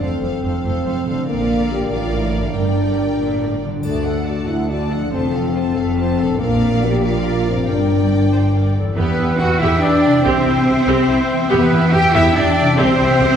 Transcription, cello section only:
0.01 0.09 F2 soft
0.23 0.31 F2 soft
0.44 0.52 F2 soft
0.65 0.73 F2 soft
0.86 0.94 F2 soft
1.07 1.15 F2 soft
1.28 1.87 A#2 medium
1.91 2.55 A2 medium
2.55 3.14 G2 medium
3.20 3.40 A#2 medium
3.42 3.63 A2 soft
3.63 3.84 G2 soft
3.84 4.41 D2 soft
4.48 5.05 D2 soft
5.13 5.69 F2 medium
5.76 6.32 F2 medium
6.39 7.63 A#2 medium
7.68 8.74 G2 medium
8.97 9.37 B3 medium
9.40 9.61 F#4 medium
9.60 9.81 E4 medium
9.81 10.24 D4 medium
10.24 11.49 C4 medium
11.52 11.93 B3 loud
11.93 12.15 G4 loud
12.15 12.36 E4 loud
12.36 12.78 D4 loud
12.79 13.36 C4 loud

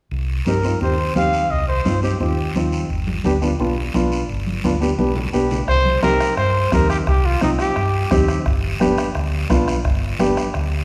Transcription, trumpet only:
0.47 0.79 A#4 medium
0.82 1.14 C5 medium
1.17 1.53 F5 medium
1.51 1.67 D#5 medium
1.68 2.00 C5 medium
2.03 2.19 G4 medium
2.21 2.53 G4 medium
5.68 6.01 C5 loud
6.03 6.35 A#4 medium
6.37 6.70 C5 medium
6.73 6.89 A#4 medium
6.90 6.98 G4 medium
7.08 7.27 G4 medium
7.26 7.42 F4 medium
7.43 7.50 D#4 medium
7.60 8.25 G4 medium

